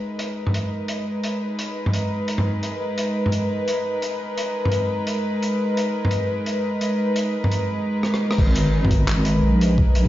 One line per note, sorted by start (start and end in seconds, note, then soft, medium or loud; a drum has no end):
0.00 10.08 G#3 medium
0.00 10.08 D#4 medium
0.00 10.08 A#4 medium
0.00 10.08 B4 medium
0.19 closed hi-hat medium
0.47 mid tom soft
0.54 closed hi-hat medium
0.88 closed hi-hat medium
1.24 closed hi-hat medium
1.59 closed hi-hat medium
1.86 mid tom soft
1.93 closed hi-hat medium
2.28 closed hi-hat medium
2.38 mid tom soft
2.63 closed hi-hat medium
2.98 closed hi-hat medium
3.26 mid tom soft
3.32 closed hi-hat medium
3.68 closed hi-hat medium
4.02 closed hi-hat medium
4.38 closed hi-hat medium
4.65 mid tom medium
4.72 closed hi-hat medium
5.07 closed hi-hat medium
5.43 closed hi-hat medium
5.77 closed hi-hat medium
6.05 mid tom medium
6.11 closed hi-hat medium
6.46 closed hi-hat medium
6.81 closed hi-hat medium
7.16 closed hi-hat medium
7.44 mid tom medium
7.52 closed hi-hat medium
8.03 cross-stick medium
8.14 cross-stick medium
8.31 cross-stick medium
8.38 9.42 G#1 medium
8.38 kick loud
8.38 crash medium
8.56 closed hi-hat loud
8.85 mid tom medium
8.91 kick medium
8.91 closed hi-hat medium
9.08 clap loud
9.25 closed hi-hat medium
9.43 10.08 A#1 loud
9.61 closed hi-hat medium
9.78 kick loud
9.95 closed hi-hat medium